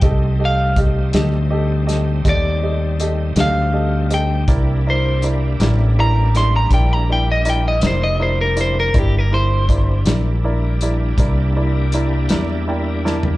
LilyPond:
<<
  \new Staff \with { instrumentName = "Clean electric guitar" } { \time 12/8 \key c \mixolydian \tempo 4. = 54 g''8 f''8 r2 d''4. f''4 g''8~ | g''8 c''8 r4 bes''8 c'''16 bes''16 g''16 bes''16 g''16 ees''16 g''16 ees''16 c''16 ees''16 c''16 bes'16 c''16 bes'16 | g'16 bes'16 c''4 r1 r8 | }
  \new Staff \with { instrumentName = "Grand piano" } { \time 12/8 \key c \mixolydian <g' a' ees''>8 <g' a' ees''>8 <g' a' ees''>8 <g' a' ees''>8 <g' a' ees''>8 <g' a' ees''>8 <g' a' ees''>8 <g' a' ees''>8 <g' a' ees''>8 <g' a' ees''>8 <g' a' ees''>8 <g' a' ees''>8 | <e' bes' d''>8 <e' bes' d''>8 <e' bes' d''>8 <e' bes' d''>8 <e' bes' d''>8 <e' bes' d''>8 <e' bes' d''>8 <e' bes' d''>8 <e' bes' d''>8 <e' bes' d''>8 <e' bes' d''>8 <e' bes' d''>8 | <e' bes' d''>8 <e' bes' c''>8 <e' bes' d''>8 <e' bes' d''>8 <e' bes' d''>8 <e' bes' d''>8 <e' bes' d''>8 <e' bes' d''>8 <e' bes' d''>8 <e' bes' d''>8 <e' bes' d'' g''>8 <e' bes' d'' a''>8 | }
  \new Staff \with { instrumentName = "Tonewheel organ" } { \time 12/8 \key c \mixolydian <g a c' ees'>1. | <g bes d' e'>1. | <g bes d' e'>1. | }
  \new Staff \with { instrumentName = "Fingered electric bass" } { \clef bass \time 12/8 \key c \mixolydian c,4. d,4. ees,4. d,4. | c,4. a,,4. bes,,4. f,,4. | g,,4. bes,,4. c,4. e,4. | }
  \new DrumStaff \with { instrumentName = "Drums" } \drummode { \time 12/8 <hh bd>4 <hh bd>8 <hh sn>4 <hh sn>8 <hh bd>4 hh8 <hh sn>4 hh8 | <hh bd>4 hh8 <hh sn>4 <hh sn>8 <hh bd>4 hh8 <hh sn>4 hh8 | <hh bd>4 <hh bd>8 <hh sn>4 hh8 <hh bd>4 hh8 <hh sn>4 sn16 tomfh16 | }
>>